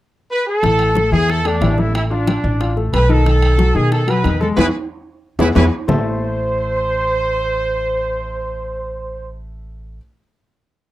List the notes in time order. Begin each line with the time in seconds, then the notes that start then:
0.31 B4
0.46 A4
0.62 A1 E3 E4, high bongo, high conga, high timbale
0.79 high conga, high timbale
0.95 A3 A4, high bongo, high conga
1.12 E2 E3 E4 G#4
1.29 A4, high bongo, high conga, high timbale
1.45 A3 D4 A4, high bongo, high conga, high timbale
1.61 A1 E3 E4, high bongo, low bongo, high timbale, low timbale
1.78 A3 E4 A4, high bongo, high conga
1.95 E4, high bongo, high conga, high timbale
2.11 D4 F4 F5, high conga
2.27 high bongo, high conga, high timbale
2.43 A1 D4 D5, high conga
2.60 F4 F5, high bongo, high conga, high timbale
2.77 A3 A4, high bongo, high conga
2.93 B1 B4, high bongo, low bongo, high conga, high timbale
3.09 D#3 D#4 A4, high bongo, high conga
3.26 D#3 D#4, high bongo, high timbale
3.42 high conga, high timbale
3.58 F#3 F#4, high bongo, high conga
3.75 B2 D#3 D#4 G#4, high conga
3.91 A4, high bongo, high conga, high timbale
4.07 F#3 F#4 B4, high bongo, high conga, high timbale
4.24 E2 D#3 D#4, high bongo, low bongo, high conga, high timbale
4.40 G#3 G#4 A4, high bongo, high conga
4.57 E2 B3 E4 G#4 B4, high bongo, high conga, high timbale
5.39 E2 B3 E4 G#4 B4, high bongo, high conga, high timbale
5.55 E2 B3 E4 G#4 B4, high bongo, high conga, high timbale
5.88 A1 A3 E4 A4 C5 E5 A5, low bongo, low conga, low timbale